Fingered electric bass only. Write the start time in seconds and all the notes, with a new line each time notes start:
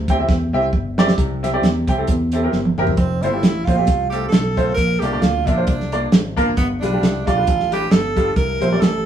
Already playing: D2
0.29 E2
0.53 C2
0.73 G1
1.18 C2
1.62 E2
1.88 C2
2.08 E2
2.53 G1
2.78 F#1
2.97 F1
3.22 G1
3.43 A1
3.67 A#1
3.88 C2
4.32 B1
4.77 A#1
5.02 C2
5.21 D2
5.47 A#1
5.68 C2
6.13 G#1
6.57 G1
6.82 B1
7.02 C2
7.28 B1
7.48 A1
7.91 G1
8.36 C2
8.62 A#1
8.81 A1